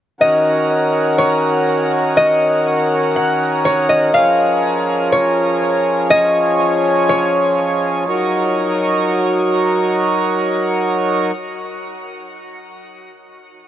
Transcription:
0.20 D#3 C#4 F#4 A#4 D#5
1.18 C#5
2.17 D#5
3.16 F#5
3.65 C#5
3.89 D#5
4.14 F3 C#4 G#4 F5
5.13 C#5
6.10 F3 C#5 D#5
7.09 C#5
8.08 F#3 D#4 A#4 C#5

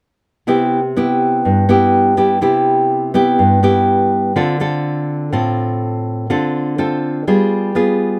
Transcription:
0.47 C3 B3 E4 G4
0.97 B3 E4 G4
1.45 G2
1.69 B3 E4 G4
2.17 B3 E4 G4
2.41 C3 B3 E4 G4
3.14 B3 E4 G4
3.39 G2
3.63 B3 E4 G4
4.36 D3 C4 F4 A4
4.60 C4 F4 A4
5.32 A2 C4 F4 A4
6.30 D3 C4 F4 A4
6.78 C4 F4 A4
7.27 G3 B3 F4 G#4
7.75 B3 F4 G#4

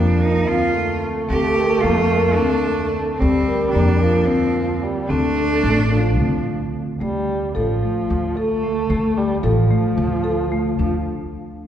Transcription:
Already playing: F2 F3 D4
0.20 D#4 A#4
0.47 D2 C4 F4
0.73 A3
1.29 D2 C4 G4
1.57 A#4
1.81 F2 A#3 F4
2.10 A#4
2.34 D4
2.38 D2 C4
3.15 G3 C4
3.21 D2 C4
3.48 A#4
3.70 D4
3.74 F2 A#3
4.01 F3 A#4
4.26 D2 C4
4.83 G3
5.07 D2 A3 C4 D4
5.37 A4
5.64 A1 A3
5.91 F3 A4
6.19 D2 C4
7.01 D2 G3 A3
7.55 A1 F3 A4
7.83 A3
8.10 D2
8.36 A3 A4
8.63 A3
8.90 D2 A3
9.17 G3
9.43 A1 F3 A4
9.71 A3
9.98 D2
10.24 A4
10.52 A3
10.79 D2 F3 D4

